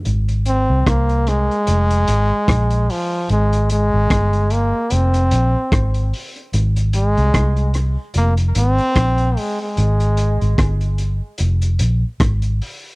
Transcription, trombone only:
X:1
M:4/4
L:1/16
Q:"Swing 16ths" 1/4=74
K:Fm
V:1 name="Trombone" clef=bass
z2 C2 B,2 A,8 F,2 | A,2 A,4 B,2 C6 z2 | z2 A,4 z2 B,2 C4 A, A,- | A,4- A, z8 z3 |]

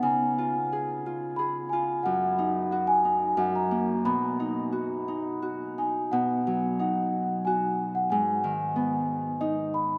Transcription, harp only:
X:1
M:3/4
L:1/8
Q:1/4=90
K:B
V:1 name="Harp"
C, ^E G E G E | F,, D F D F,, A, | B,, D F D F D | B,, F, D2 F2 |
G,, D, B,2 D2 |]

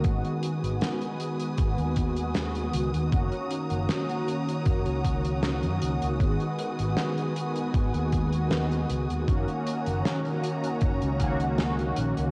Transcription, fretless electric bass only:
X:1
M:4/4
L:1/16
Q:1/4=78
K:F#
V:1 name="Fretless electric bass" clef=bass
G,,, z2 G,,, z4 G,,, D,,4- D,, C,, D,, | z3 F,,, z4 F,,, C,,4 F,, C,, C,, | G,,, z2 G,,, z4 G,,, D,,4- D,, C,, D,, | F,,, z2 F,,, z4 F,,, C,,4- C,, A,,, C,, |]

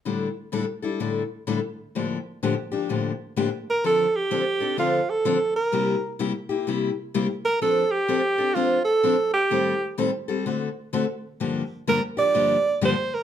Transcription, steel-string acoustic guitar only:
X:1
M:4/4
L:1/8
Q:"Swing" 1/4=127
K:Dm
V:1 name="Steel-string acoustic guitar"
[A,,D,G,DEA] z [A,,D,G,DEA] [G,DEA] [A,,D,G,DEA] z [A,,D,G,DEA] z | [A,,D,F,B,DG] z [A,,D,F,B,DG] [F,B,DG] [A,,D,F,B,DG] z [A,,D,F,B,DG] z | [D,F,CDA] z [D,F,CDA] [CDA] [D,F,CDA] z [D,F,CDA] z | [C,G,B,EG] z [C,G,B,EG] [B,EG] [C,G,B,EG] z [C,G,B,EG] z |
[F,CDA] z [F,CDA] [CDA] [F,CDA] z [F,CDA] z | [A,,_E,G,CGA] z [A,,E,G,CGA] [G,CGA] [D,A,C^FA] z [D,A,CFA] z | [G,,D,F,B,DG] z [G,,D,F,B,DG] [F,B,DG] [G,,D,F,B,DG] z [G,,D,F,B,DG] z |]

